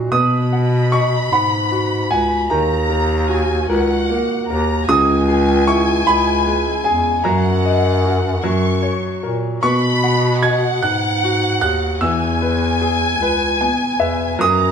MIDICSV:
0, 0, Header, 1, 5, 480
1, 0, Start_track
1, 0, Key_signature, 5, "major"
1, 0, Tempo, 792602
1, 72, Time_signature, 6, 3, 24, 8
1, 8912, End_track
2, 0, Start_track
2, 0, Title_t, "Grand piano"
2, 0, Program_c, 0, 0
2, 71, Note_on_c, 0, 87, 106
2, 558, Note_on_c, 0, 85, 96
2, 570, Note_off_c, 0, 87, 0
2, 781, Note_off_c, 0, 85, 0
2, 802, Note_on_c, 0, 83, 89
2, 1256, Note_off_c, 0, 83, 0
2, 1276, Note_on_c, 0, 80, 93
2, 1499, Note_off_c, 0, 80, 0
2, 1514, Note_on_c, 0, 82, 92
2, 2687, Note_off_c, 0, 82, 0
2, 2960, Note_on_c, 0, 87, 125
2, 3409, Note_off_c, 0, 87, 0
2, 3437, Note_on_c, 0, 85, 105
2, 3675, Note_on_c, 0, 83, 106
2, 3679, Note_off_c, 0, 85, 0
2, 4125, Note_off_c, 0, 83, 0
2, 4144, Note_on_c, 0, 80, 87
2, 4367, Note_off_c, 0, 80, 0
2, 4383, Note_on_c, 0, 82, 89
2, 5565, Note_off_c, 0, 82, 0
2, 5830, Note_on_c, 0, 85, 107
2, 6289, Note_off_c, 0, 85, 0
2, 6314, Note_on_c, 0, 92, 95
2, 6556, Note_on_c, 0, 90, 99
2, 6563, Note_off_c, 0, 92, 0
2, 7024, Note_off_c, 0, 90, 0
2, 7034, Note_on_c, 0, 90, 105
2, 7273, Note_on_c, 0, 88, 91
2, 7283, Note_off_c, 0, 90, 0
2, 8209, Note_off_c, 0, 88, 0
2, 8727, Note_on_c, 0, 87, 121
2, 8912, Note_off_c, 0, 87, 0
2, 8912, End_track
3, 0, Start_track
3, 0, Title_t, "Violin section"
3, 0, Program_c, 1, 48
3, 76, Note_on_c, 1, 83, 98
3, 1495, Note_off_c, 1, 83, 0
3, 1521, Note_on_c, 1, 82, 103
3, 1997, Note_off_c, 1, 82, 0
3, 1999, Note_on_c, 1, 80, 97
3, 2236, Note_off_c, 1, 80, 0
3, 2237, Note_on_c, 1, 78, 101
3, 2690, Note_off_c, 1, 78, 0
3, 2719, Note_on_c, 1, 82, 99
3, 2952, Note_on_c, 1, 80, 113
3, 2955, Note_off_c, 1, 82, 0
3, 4379, Note_on_c, 1, 78, 102
3, 4385, Note_off_c, 1, 80, 0
3, 5103, Note_off_c, 1, 78, 0
3, 5106, Note_on_c, 1, 85, 92
3, 5590, Note_off_c, 1, 85, 0
3, 5832, Note_on_c, 1, 83, 118
3, 6290, Note_off_c, 1, 83, 0
3, 6312, Note_on_c, 1, 78, 124
3, 7277, Note_off_c, 1, 78, 0
3, 7278, Note_on_c, 1, 80, 116
3, 8712, Note_on_c, 1, 82, 116
3, 8713, Note_off_c, 1, 80, 0
3, 8912, Note_off_c, 1, 82, 0
3, 8912, End_track
4, 0, Start_track
4, 0, Title_t, "Grand piano"
4, 0, Program_c, 2, 0
4, 0, Control_c, 2, 64, 127
4, 0, Note_on_c, 2, 54, 64
4, 0, Note_on_c, 2, 59, 52
4, 0, Note_on_c, 2, 63, 52
4, 0, Note_on_c, 2, 66, 53
4, 70, Note_off_c, 2, 66, 0
4, 72, Note_off_c, 2, 59, 0
4, 72, Note_on_c, 2, 59, 70
4, 81, Control_c, 2, 64, 0
4, 82, Note_off_c, 2, 63, 0
4, 87, Note_off_c, 2, 54, 0
4, 185, Control_c, 2, 64, 127
4, 319, Note_on_c, 2, 78, 56
4, 568, Note_on_c, 2, 75, 55
4, 795, Note_off_c, 2, 78, 0
4, 804, Note_on_c, 2, 78, 64
4, 1039, Note_on_c, 2, 66, 57
4, 1266, Note_off_c, 2, 78, 0
4, 1275, Note_on_c, 2, 78, 54
4, 1493, Note_off_c, 2, 59, 0
4, 1499, Note_off_c, 2, 75, 0
4, 1503, Note_off_c, 2, 66, 0
4, 1509, Note_off_c, 2, 78, 0
4, 1521, Note_on_c, 2, 51, 78
4, 1525, Control_c, 2, 64, 0
4, 1617, Control_c, 2, 64, 127
4, 1755, Note_on_c, 2, 70, 55
4, 1993, Note_on_c, 2, 66, 57
4, 2230, Note_off_c, 2, 70, 0
4, 2239, Note_on_c, 2, 70, 70
4, 2482, Note_on_c, 2, 58, 70
4, 2718, Note_off_c, 2, 70, 0
4, 2727, Note_on_c, 2, 70, 57
4, 2926, Note_off_c, 2, 66, 0
4, 2929, Note_off_c, 2, 51, 0
4, 2942, Note_off_c, 2, 58, 0
4, 2952, Note_off_c, 2, 70, 0
4, 2960, Control_c, 2, 64, 0
4, 2962, Note_on_c, 2, 49, 78
4, 3057, Control_c, 2, 64, 127
4, 3198, Note_on_c, 2, 68, 67
4, 3442, Note_on_c, 2, 64, 66
4, 3671, Note_off_c, 2, 68, 0
4, 3680, Note_on_c, 2, 68, 68
4, 3918, Note_on_c, 2, 56, 61
4, 4143, Note_off_c, 2, 68, 0
4, 4152, Note_on_c, 2, 68, 61
4, 4366, Note_off_c, 2, 49, 0
4, 4367, Note_off_c, 2, 64, 0
4, 4376, Note_off_c, 2, 56, 0
4, 4381, Note_off_c, 2, 68, 0
4, 4389, Note_on_c, 2, 54, 79
4, 4393, Control_c, 2, 64, 0
4, 4509, Control_c, 2, 64, 127
4, 4633, Note_on_c, 2, 75, 58
4, 4870, Note_on_c, 2, 66, 57
4, 5087, Note_off_c, 2, 54, 0
4, 5097, Note_off_c, 2, 75, 0
4, 5102, Note_off_c, 2, 66, 0
4, 5108, Note_on_c, 2, 54, 72
4, 5113, Control_c, 2, 64, 0
4, 5206, Control_c, 2, 64, 127
4, 5345, Note_on_c, 2, 73, 55
4, 5591, Note_on_c, 2, 70, 55
4, 5811, Note_off_c, 2, 54, 0
4, 5816, Note_off_c, 2, 73, 0
4, 5825, Note_off_c, 2, 70, 0
4, 5834, Note_on_c, 2, 59, 76
4, 5839, Control_c, 2, 64, 0
4, 5962, Control_c, 2, 64, 127
4, 6078, Note_on_c, 2, 78, 61
4, 6319, Note_on_c, 2, 75, 55
4, 6557, Note_off_c, 2, 78, 0
4, 6566, Note_on_c, 2, 78, 65
4, 6807, Note_on_c, 2, 66, 59
4, 7035, Note_off_c, 2, 78, 0
4, 7044, Note_on_c, 2, 78, 55
4, 7255, Note_off_c, 2, 59, 0
4, 7256, Note_off_c, 2, 75, 0
4, 7268, Note_off_c, 2, 66, 0
4, 7274, Note_off_c, 2, 78, 0
4, 7283, Note_on_c, 2, 52, 66
4, 7287, Control_c, 2, 64, 0
4, 7408, Control_c, 2, 64, 127
4, 7522, Note_on_c, 2, 71, 56
4, 7761, Note_on_c, 2, 68, 54
4, 7998, Note_off_c, 2, 71, 0
4, 8008, Note_on_c, 2, 71, 65
4, 8242, Note_on_c, 2, 59, 60
4, 8242, Note_on_c, 2, 80, 75
4, 8461, Note_off_c, 2, 80, 0
4, 8466, Note_off_c, 2, 71, 0
4, 8475, Note_on_c, 2, 71, 53
4, 8477, Note_on_c, 2, 76, 66
4, 8690, Note_off_c, 2, 68, 0
4, 8691, Note_off_c, 2, 52, 0
4, 8697, Note_off_c, 2, 76, 0
4, 8701, Note_off_c, 2, 59, 0
4, 8706, Note_off_c, 2, 71, 0
4, 8713, Note_on_c, 2, 54, 73
4, 8721, Control_c, 2, 64, 0
4, 8839, Control_c, 2, 64, 127
4, 8912, Note_off_c, 2, 54, 0
4, 8912, End_track
5, 0, Start_track
5, 0, Title_t, "Bass clarinet"
5, 0, Program_c, 3, 71
5, 72, Note_on_c, 3, 47, 116
5, 773, Note_off_c, 3, 47, 0
5, 796, Note_on_c, 3, 44, 87
5, 1253, Note_off_c, 3, 44, 0
5, 1277, Note_on_c, 3, 37, 87
5, 1503, Note_off_c, 3, 37, 0
5, 1517, Note_on_c, 3, 39, 114
5, 2211, Note_off_c, 3, 39, 0
5, 2231, Note_on_c, 3, 37, 105
5, 2530, Note_off_c, 3, 37, 0
5, 2712, Note_on_c, 3, 39, 108
5, 2937, Note_off_c, 3, 39, 0
5, 2954, Note_on_c, 3, 37, 127
5, 3645, Note_off_c, 3, 37, 0
5, 3667, Note_on_c, 3, 37, 97
5, 4121, Note_off_c, 3, 37, 0
5, 4152, Note_on_c, 3, 40, 95
5, 4374, Note_off_c, 3, 40, 0
5, 4391, Note_on_c, 3, 42, 109
5, 5085, Note_off_c, 3, 42, 0
5, 5110, Note_on_c, 3, 42, 102
5, 5409, Note_off_c, 3, 42, 0
5, 5593, Note_on_c, 3, 46, 85
5, 5819, Note_off_c, 3, 46, 0
5, 5831, Note_on_c, 3, 47, 120
5, 6532, Note_off_c, 3, 47, 0
5, 6558, Note_on_c, 3, 44, 85
5, 7015, Note_off_c, 3, 44, 0
5, 7036, Note_on_c, 3, 39, 91
5, 7263, Note_off_c, 3, 39, 0
5, 7275, Note_on_c, 3, 40, 115
5, 7995, Note_on_c, 3, 37, 92
5, 8004, Note_off_c, 3, 40, 0
5, 8294, Note_off_c, 3, 37, 0
5, 8474, Note_on_c, 3, 40, 88
5, 8698, Note_off_c, 3, 40, 0
5, 8714, Note_on_c, 3, 42, 118
5, 8912, Note_off_c, 3, 42, 0
5, 8912, End_track
0, 0, End_of_file